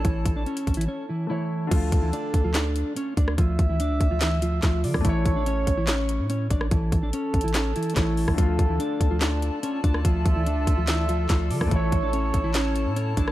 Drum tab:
CC |------------------------------------------------|x-----------------------------------------------|------------------------------------------------|------------------------------------------------|
HH |x-----x-----x--x--x-x-x-------------------------|x-----x-----x-----x-----x-----x-----x-----x-----|x-----x-----x-----x-----x-----x-----x-----o-----|x-----x-----x-----x-----x-----x-----x-----x-----|
CP |------------------------------------------------|------------------------x-----------------------|------------------------x-----------x-----------|------------------------x-----------------------|
SD |------------------------------------------------|------------------------o--------------------r--|------------------------o-----------o--------r--|------------------------o--------------------r--|
BD |o-----o-----------o-----------------------------|o-----o-----------o-----------------------o-----|o-----o-----------o-----------------o--------o--|o-----o-----------o-----------------------o-----|

CC |------------------------------------------------|------------------------------------------------|------------------------------------------------|------------------------------------------------|
HH |x-----x-----x-----x-x-x-x-----x-x-x-x-----o-----|x-----x-----x-----x-----x-----x-----x-----x-----|x-----x-----x-----x-----x-----x-----x-----o-----|x-----x-----x-----x-----x-----x-----x-----x-----|
CP |------------------------x-----------x-----------|------------------------x-----------------------|------------------------x-----------x-----------|------------------------x-----------------------|
SD |------------------------o-----------o--------r--|------------------------o--------------------r--|------------------------o-----------o--------r--|------------------------o--------------------r--|
BD |o-----o-----------o-----------------o--------o--|o-----o-----------o-----------------------o-----|o-----o-----------o-----------------o--------o--|o-----o-----------o-----------------------o-----|